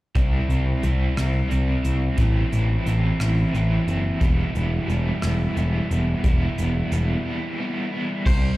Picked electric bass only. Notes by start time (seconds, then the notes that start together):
0.16 C2
0.48 C2
0.83 C2
1.17 C2
1.52 C2
1.85 C2
2.18 A1
2.52 A1
2.86 A1
3.20 A1
3.53 A1
3.87 F#1
4.21 E1
4.55 E1
4.88 E1
5.23 E1
5.57 E1
5.91 E1
6.24 E1
6.58 E1
6.92 E1
8.26 C2